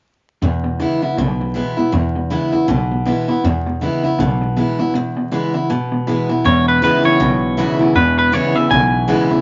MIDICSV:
0, 0, Header, 1, 6, 480
1, 0, Start_track
1, 0, Key_signature, 4, "major"
1, 0, Tempo, 376648
1, 534, Time_signature, 4, 2, 24, 8
1, 11996, End_track
2, 0, Start_track
2, 0, Title_t, "Clean electric guitar"
2, 0, Program_c, 0, 27
2, 8229, Note_on_c, 0, 73, 81
2, 8512, Note_off_c, 0, 73, 0
2, 8517, Note_on_c, 0, 71, 78
2, 8697, Note_off_c, 0, 71, 0
2, 8712, Note_on_c, 0, 71, 75
2, 8983, Note_off_c, 0, 71, 0
2, 8988, Note_on_c, 0, 73, 92
2, 10135, Note_off_c, 0, 73, 0
2, 10140, Note_on_c, 0, 71, 88
2, 10417, Note_off_c, 0, 71, 0
2, 10432, Note_on_c, 0, 71, 94
2, 10620, Note_off_c, 0, 71, 0
2, 10620, Note_on_c, 0, 73, 81
2, 10903, Note_off_c, 0, 73, 0
2, 10903, Note_on_c, 0, 76, 100
2, 11090, Note_off_c, 0, 76, 0
2, 11095, Note_on_c, 0, 80, 99
2, 11806, Note_off_c, 0, 80, 0
2, 11996, End_track
3, 0, Start_track
3, 0, Title_t, "Steel-string acoustic guitar"
3, 0, Program_c, 1, 25
3, 540, Note_on_c, 1, 40, 82
3, 1015, Note_on_c, 1, 52, 58
3, 1027, Note_on_c, 1, 56, 62
3, 1038, Note_on_c, 1, 59, 65
3, 1043, Note_on_c, 1, 64, 66
3, 1286, Note_off_c, 1, 64, 0
3, 1287, Note_off_c, 1, 52, 0
3, 1294, Note_off_c, 1, 56, 0
3, 1299, Note_off_c, 1, 59, 0
3, 1301, Note_on_c, 1, 64, 56
3, 1330, Note_on_c, 1, 59, 44
3, 1459, Note_off_c, 1, 40, 0
3, 1488, Note_off_c, 1, 64, 0
3, 1503, Note_off_c, 1, 59, 0
3, 1508, Note_on_c, 1, 47, 89
3, 1961, Note_on_c, 1, 52, 62
3, 1973, Note_on_c, 1, 56, 56
3, 1984, Note_on_c, 1, 59, 64
3, 1992, Note_on_c, 1, 64, 66
3, 2238, Note_off_c, 1, 64, 0
3, 2241, Note_off_c, 1, 52, 0
3, 2247, Note_off_c, 1, 56, 0
3, 2253, Note_off_c, 1, 59, 0
3, 2253, Note_on_c, 1, 64, 57
3, 2284, Note_on_c, 1, 59, 48
3, 2423, Note_off_c, 1, 47, 0
3, 2445, Note_off_c, 1, 64, 0
3, 2450, Note_on_c, 1, 40, 92
3, 2460, Note_off_c, 1, 59, 0
3, 2935, Note_on_c, 1, 52, 65
3, 2944, Note_on_c, 1, 56, 65
3, 2951, Note_on_c, 1, 59, 69
3, 2963, Note_on_c, 1, 64, 74
3, 3200, Note_off_c, 1, 64, 0
3, 3209, Note_off_c, 1, 52, 0
3, 3213, Note_off_c, 1, 56, 0
3, 3215, Note_on_c, 1, 64, 50
3, 3217, Note_off_c, 1, 59, 0
3, 3243, Note_on_c, 1, 59, 43
3, 3375, Note_off_c, 1, 40, 0
3, 3406, Note_off_c, 1, 64, 0
3, 3415, Note_on_c, 1, 47, 89
3, 3420, Note_off_c, 1, 59, 0
3, 3893, Note_on_c, 1, 52, 63
3, 3906, Note_on_c, 1, 56, 60
3, 3918, Note_on_c, 1, 59, 63
3, 3922, Note_on_c, 1, 64, 64
3, 4165, Note_off_c, 1, 64, 0
3, 4168, Note_off_c, 1, 52, 0
3, 4175, Note_off_c, 1, 56, 0
3, 4181, Note_off_c, 1, 59, 0
3, 4181, Note_on_c, 1, 64, 57
3, 4212, Note_on_c, 1, 59, 52
3, 4338, Note_off_c, 1, 47, 0
3, 4370, Note_off_c, 1, 64, 0
3, 4385, Note_off_c, 1, 59, 0
3, 4391, Note_on_c, 1, 40, 94
3, 4858, Note_on_c, 1, 52, 65
3, 4869, Note_on_c, 1, 56, 66
3, 4879, Note_on_c, 1, 59, 67
3, 4891, Note_on_c, 1, 64, 73
3, 5131, Note_off_c, 1, 52, 0
3, 5133, Note_off_c, 1, 64, 0
3, 5137, Note_off_c, 1, 56, 0
3, 5142, Note_off_c, 1, 59, 0
3, 5149, Note_on_c, 1, 64, 56
3, 5176, Note_on_c, 1, 59, 47
3, 5306, Note_off_c, 1, 40, 0
3, 5334, Note_off_c, 1, 64, 0
3, 5348, Note_off_c, 1, 59, 0
3, 5351, Note_on_c, 1, 47, 89
3, 5817, Note_on_c, 1, 52, 56
3, 5827, Note_on_c, 1, 56, 58
3, 5835, Note_on_c, 1, 59, 58
3, 5842, Note_on_c, 1, 64, 60
3, 6089, Note_off_c, 1, 64, 0
3, 6091, Note_off_c, 1, 52, 0
3, 6096, Note_off_c, 1, 56, 0
3, 6100, Note_off_c, 1, 59, 0
3, 6104, Note_on_c, 1, 64, 59
3, 6130, Note_on_c, 1, 59, 50
3, 6267, Note_off_c, 1, 47, 0
3, 6292, Note_off_c, 1, 64, 0
3, 6305, Note_off_c, 1, 59, 0
3, 6312, Note_on_c, 1, 40, 85
3, 6772, Note_on_c, 1, 52, 66
3, 6786, Note_on_c, 1, 56, 63
3, 6792, Note_on_c, 1, 59, 66
3, 6802, Note_on_c, 1, 64, 74
3, 7043, Note_off_c, 1, 64, 0
3, 7049, Note_off_c, 1, 52, 0
3, 7056, Note_off_c, 1, 56, 0
3, 7059, Note_off_c, 1, 59, 0
3, 7059, Note_on_c, 1, 64, 61
3, 7091, Note_on_c, 1, 59, 45
3, 7227, Note_off_c, 1, 40, 0
3, 7250, Note_off_c, 1, 64, 0
3, 7262, Note_on_c, 1, 47, 84
3, 7266, Note_off_c, 1, 59, 0
3, 7736, Note_on_c, 1, 52, 58
3, 7748, Note_on_c, 1, 56, 55
3, 7759, Note_on_c, 1, 59, 60
3, 7765, Note_on_c, 1, 64, 58
3, 8005, Note_off_c, 1, 64, 0
3, 8011, Note_off_c, 1, 52, 0
3, 8016, Note_off_c, 1, 56, 0
3, 8020, Note_on_c, 1, 64, 58
3, 8022, Note_off_c, 1, 59, 0
3, 8047, Note_on_c, 1, 59, 42
3, 8182, Note_off_c, 1, 47, 0
3, 8210, Note_off_c, 1, 64, 0
3, 8221, Note_on_c, 1, 40, 88
3, 8223, Note_off_c, 1, 59, 0
3, 8692, Note_on_c, 1, 52, 98
3, 8707, Note_on_c, 1, 56, 96
3, 8717, Note_on_c, 1, 59, 95
3, 8722, Note_on_c, 1, 64, 99
3, 8952, Note_off_c, 1, 64, 0
3, 8968, Note_off_c, 1, 52, 0
3, 8968, Note_on_c, 1, 64, 56
3, 8975, Note_off_c, 1, 56, 0
3, 8980, Note_off_c, 1, 59, 0
3, 9004, Note_on_c, 1, 59, 48
3, 9140, Note_off_c, 1, 40, 0
3, 9163, Note_off_c, 1, 64, 0
3, 9173, Note_on_c, 1, 47, 94
3, 9181, Note_off_c, 1, 59, 0
3, 9650, Note_on_c, 1, 52, 83
3, 9661, Note_on_c, 1, 56, 76
3, 9669, Note_on_c, 1, 59, 82
3, 9676, Note_on_c, 1, 64, 98
3, 9914, Note_off_c, 1, 64, 0
3, 9926, Note_off_c, 1, 52, 0
3, 9930, Note_on_c, 1, 64, 57
3, 9932, Note_off_c, 1, 56, 0
3, 9935, Note_off_c, 1, 59, 0
3, 9958, Note_on_c, 1, 59, 46
3, 10095, Note_off_c, 1, 47, 0
3, 10123, Note_off_c, 1, 64, 0
3, 10138, Note_off_c, 1, 59, 0
3, 10607, Note_on_c, 1, 52, 92
3, 10614, Note_on_c, 1, 56, 98
3, 10622, Note_on_c, 1, 59, 99
3, 10635, Note_on_c, 1, 64, 94
3, 10874, Note_off_c, 1, 64, 0
3, 10883, Note_off_c, 1, 52, 0
3, 10887, Note_off_c, 1, 56, 0
3, 10889, Note_on_c, 1, 64, 57
3, 10891, Note_off_c, 1, 59, 0
3, 10917, Note_on_c, 1, 59, 44
3, 11082, Note_off_c, 1, 64, 0
3, 11096, Note_off_c, 1, 59, 0
3, 11103, Note_on_c, 1, 47, 91
3, 11567, Note_on_c, 1, 52, 76
3, 11576, Note_on_c, 1, 56, 92
3, 11587, Note_on_c, 1, 59, 86
3, 11595, Note_on_c, 1, 64, 91
3, 11839, Note_off_c, 1, 64, 0
3, 11842, Note_off_c, 1, 52, 0
3, 11847, Note_off_c, 1, 56, 0
3, 11852, Note_off_c, 1, 59, 0
3, 11854, Note_on_c, 1, 64, 60
3, 11885, Note_on_c, 1, 59, 50
3, 11996, Note_off_c, 1, 47, 0
3, 11996, Note_off_c, 1, 59, 0
3, 11996, Note_off_c, 1, 64, 0
3, 11996, End_track
4, 0, Start_track
4, 0, Title_t, "Clean electric guitar"
4, 0, Program_c, 2, 27
4, 534, Note_on_c, 2, 40, 75
4, 541, Note_on_c, 2, 47, 84
4, 790, Note_off_c, 2, 40, 0
4, 793, Note_off_c, 2, 47, 0
4, 814, Note_on_c, 2, 40, 70
4, 819, Note_on_c, 2, 47, 83
4, 993, Note_off_c, 2, 40, 0
4, 995, Note_off_c, 2, 47, 0
4, 1014, Note_on_c, 2, 40, 76
4, 1022, Note_on_c, 2, 49, 89
4, 1270, Note_off_c, 2, 40, 0
4, 1274, Note_off_c, 2, 49, 0
4, 1308, Note_on_c, 2, 40, 72
4, 1313, Note_on_c, 2, 49, 80
4, 1480, Note_off_c, 2, 40, 0
4, 1483, Note_off_c, 2, 49, 0
4, 1497, Note_on_c, 2, 40, 84
4, 1508, Note_on_c, 2, 47, 84
4, 1752, Note_off_c, 2, 40, 0
4, 1757, Note_off_c, 2, 47, 0
4, 1794, Note_on_c, 2, 40, 77
4, 1802, Note_on_c, 2, 47, 75
4, 1963, Note_off_c, 2, 40, 0
4, 1967, Note_off_c, 2, 47, 0
4, 1987, Note_on_c, 2, 40, 77
4, 1993, Note_on_c, 2, 47, 83
4, 2237, Note_off_c, 2, 40, 0
4, 2240, Note_off_c, 2, 47, 0
4, 2266, Note_on_c, 2, 40, 76
4, 2275, Note_on_c, 2, 47, 90
4, 2440, Note_off_c, 2, 40, 0
4, 2444, Note_off_c, 2, 47, 0
4, 2461, Note_on_c, 2, 40, 83
4, 2469, Note_on_c, 2, 47, 93
4, 2714, Note_off_c, 2, 40, 0
4, 2718, Note_off_c, 2, 47, 0
4, 2746, Note_on_c, 2, 40, 71
4, 2754, Note_on_c, 2, 47, 74
4, 2920, Note_off_c, 2, 40, 0
4, 2924, Note_off_c, 2, 47, 0
4, 2941, Note_on_c, 2, 40, 82
4, 2950, Note_on_c, 2, 49, 95
4, 3195, Note_off_c, 2, 40, 0
4, 3199, Note_off_c, 2, 49, 0
4, 3226, Note_on_c, 2, 40, 74
4, 3232, Note_on_c, 2, 49, 71
4, 3400, Note_off_c, 2, 40, 0
4, 3403, Note_off_c, 2, 49, 0
4, 3427, Note_on_c, 2, 40, 79
4, 3432, Note_on_c, 2, 47, 93
4, 3678, Note_off_c, 2, 40, 0
4, 3681, Note_off_c, 2, 47, 0
4, 3714, Note_on_c, 2, 40, 79
4, 3722, Note_on_c, 2, 47, 81
4, 3885, Note_off_c, 2, 40, 0
4, 3888, Note_off_c, 2, 47, 0
4, 3903, Note_on_c, 2, 40, 85
4, 3908, Note_on_c, 2, 47, 100
4, 4156, Note_off_c, 2, 40, 0
4, 4159, Note_off_c, 2, 47, 0
4, 4190, Note_on_c, 2, 40, 77
4, 4195, Note_on_c, 2, 47, 83
4, 4363, Note_off_c, 2, 40, 0
4, 4365, Note_off_c, 2, 47, 0
4, 4388, Note_on_c, 2, 40, 77
4, 4393, Note_on_c, 2, 47, 101
4, 4639, Note_off_c, 2, 40, 0
4, 4641, Note_off_c, 2, 47, 0
4, 4670, Note_on_c, 2, 40, 74
4, 4677, Note_on_c, 2, 47, 83
4, 4843, Note_off_c, 2, 40, 0
4, 4847, Note_off_c, 2, 47, 0
4, 4866, Note_on_c, 2, 40, 87
4, 4874, Note_on_c, 2, 49, 100
4, 5118, Note_off_c, 2, 40, 0
4, 5122, Note_off_c, 2, 49, 0
4, 5142, Note_on_c, 2, 40, 66
4, 5151, Note_on_c, 2, 49, 81
4, 5319, Note_off_c, 2, 40, 0
4, 5324, Note_off_c, 2, 49, 0
4, 5337, Note_on_c, 2, 40, 79
4, 5341, Note_on_c, 2, 47, 96
4, 5594, Note_off_c, 2, 40, 0
4, 5596, Note_off_c, 2, 47, 0
4, 5622, Note_on_c, 2, 40, 72
4, 5631, Note_on_c, 2, 47, 80
4, 5799, Note_off_c, 2, 40, 0
4, 5804, Note_off_c, 2, 47, 0
4, 5821, Note_on_c, 2, 40, 80
4, 5825, Note_on_c, 2, 47, 92
4, 6076, Note_off_c, 2, 40, 0
4, 6078, Note_off_c, 2, 47, 0
4, 6102, Note_on_c, 2, 40, 81
4, 6112, Note_on_c, 2, 47, 90
4, 6280, Note_off_c, 2, 40, 0
4, 6284, Note_off_c, 2, 47, 0
4, 6296, Note_on_c, 2, 40, 81
4, 6305, Note_on_c, 2, 47, 91
4, 6554, Note_off_c, 2, 40, 0
4, 6558, Note_off_c, 2, 47, 0
4, 6584, Note_on_c, 2, 40, 71
4, 6589, Note_on_c, 2, 47, 72
4, 6761, Note_off_c, 2, 40, 0
4, 6763, Note_off_c, 2, 47, 0
4, 6779, Note_on_c, 2, 40, 85
4, 6786, Note_on_c, 2, 49, 89
4, 7035, Note_off_c, 2, 40, 0
4, 7039, Note_off_c, 2, 49, 0
4, 7065, Note_on_c, 2, 40, 71
4, 7072, Note_on_c, 2, 49, 75
4, 7241, Note_off_c, 2, 40, 0
4, 7244, Note_off_c, 2, 49, 0
4, 7262, Note_on_c, 2, 40, 76
4, 7268, Note_on_c, 2, 47, 95
4, 7517, Note_off_c, 2, 40, 0
4, 7520, Note_off_c, 2, 47, 0
4, 7543, Note_on_c, 2, 40, 80
4, 7548, Note_on_c, 2, 47, 78
4, 7720, Note_off_c, 2, 40, 0
4, 7723, Note_off_c, 2, 47, 0
4, 7737, Note_on_c, 2, 40, 73
4, 7746, Note_on_c, 2, 47, 83
4, 7994, Note_off_c, 2, 40, 0
4, 7998, Note_off_c, 2, 47, 0
4, 8020, Note_on_c, 2, 40, 84
4, 8027, Note_on_c, 2, 47, 81
4, 8198, Note_off_c, 2, 40, 0
4, 8202, Note_off_c, 2, 47, 0
4, 8218, Note_on_c, 2, 40, 81
4, 8223, Note_on_c, 2, 47, 88
4, 8659, Note_off_c, 2, 40, 0
4, 8662, Note_off_c, 2, 47, 0
4, 8694, Note_on_c, 2, 40, 83
4, 8702, Note_on_c, 2, 49, 93
4, 8952, Note_off_c, 2, 40, 0
4, 8956, Note_off_c, 2, 49, 0
4, 8984, Note_on_c, 2, 40, 70
4, 8988, Note_on_c, 2, 49, 80
4, 9160, Note_off_c, 2, 40, 0
4, 9162, Note_off_c, 2, 49, 0
4, 9178, Note_on_c, 2, 40, 84
4, 9185, Note_on_c, 2, 47, 88
4, 9619, Note_off_c, 2, 40, 0
4, 9622, Note_off_c, 2, 47, 0
4, 9660, Note_on_c, 2, 40, 84
4, 9668, Note_on_c, 2, 49, 88
4, 9914, Note_off_c, 2, 40, 0
4, 9918, Note_off_c, 2, 49, 0
4, 9945, Note_on_c, 2, 40, 76
4, 9952, Note_on_c, 2, 49, 89
4, 10119, Note_off_c, 2, 40, 0
4, 10123, Note_off_c, 2, 49, 0
4, 10138, Note_on_c, 2, 40, 84
4, 10144, Note_on_c, 2, 47, 102
4, 10577, Note_off_c, 2, 40, 0
4, 10580, Note_off_c, 2, 47, 0
4, 10614, Note_on_c, 2, 40, 85
4, 10621, Note_on_c, 2, 49, 104
4, 10870, Note_off_c, 2, 40, 0
4, 10873, Note_off_c, 2, 49, 0
4, 10897, Note_on_c, 2, 40, 73
4, 10903, Note_on_c, 2, 49, 76
4, 11074, Note_off_c, 2, 40, 0
4, 11077, Note_off_c, 2, 49, 0
4, 11092, Note_on_c, 2, 40, 88
4, 11099, Note_on_c, 2, 47, 87
4, 11533, Note_off_c, 2, 40, 0
4, 11537, Note_off_c, 2, 47, 0
4, 11573, Note_on_c, 2, 40, 78
4, 11580, Note_on_c, 2, 49, 94
4, 11829, Note_off_c, 2, 40, 0
4, 11832, Note_off_c, 2, 49, 0
4, 11859, Note_on_c, 2, 40, 81
4, 11865, Note_on_c, 2, 49, 100
4, 11996, Note_off_c, 2, 40, 0
4, 11996, Note_off_c, 2, 49, 0
4, 11996, End_track
5, 0, Start_track
5, 0, Title_t, "Upright bass"
5, 0, Program_c, 3, 32
5, 532, Note_on_c, 3, 40, 89
5, 1068, Note_off_c, 3, 40, 0
5, 1498, Note_on_c, 3, 35, 80
5, 2032, Note_off_c, 3, 35, 0
5, 2458, Note_on_c, 3, 40, 85
5, 2993, Note_off_c, 3, 40, 0
5, 3416, Note_on_c, 3, 35, 88
5, 3952, Note_off_c, 3, 35, 0
5, 4381, Note_on_c, 3, 40, 89
5, 4916, Note_off_c, 3, 40, 0
5, 5338, Note_on_c, 3, 35, 88
5, 5873, Note_off_c, 3, 35, 0
5, 8222, Note_on_c, 3, 40, 95
5, 8756, Note_off_c, 3, 40, 0
5, 9176, Note_on_c, 3, 35, 87
5, 9711, Note_off_c, 3, 35, 0
5, 10131, Note_on_c, 3, 40, 97
5, 10667, Note_off_c, 3, 40, 0
5, 11092, Note_on_c, 3, 35, 90
5, 11627, Note_off_c, 3, 35, 0
5, 11996, End_track
6, 0, Start_track
6, 0, Title_t, "Muted upright bass strokes"
6, 1298, Note_on_c, 9, 29, 66
6, 1426, Note_off_c, 9, 29, 0
6, 2266, Note_on_c, 9, 29, 63
6, 2393, Note_off_c, 9, 29, 0
6, 3225, Note_on_c, 9, 29, 66
6, 3353, Note_off_c, 9, 29, 0
6, 4182, Note_on_c, 9, 29, 67
6, 4310, Note_off_c, 9, 29, 0
6, 5144, Note_on_c, 9, 29, 62
6, 5272, Note_off_c, 9, 29, 0
6, 6106, Note_on_c, 9, 29, 70
6, 6233, Note_off_c, 9, 29, 0
6, 8984, Note_on_c, 9, 29, 69
6, 9111, Note_off_c, 9, 29, 0
6, 9941, Note_on_c, 9, 29, 69
6, 10068, Note_off_c, 9, 29, 0
6, 10897, Note_on_c, 9, 29, 68
6, 11024, Note_off_c, 9, 29, 0
6, 11858, Note_on_c, 9, 29, 71
6, 11985, Note_off_c, 9, 29, 0
6, 11996, End_track
0, 0, End_of_file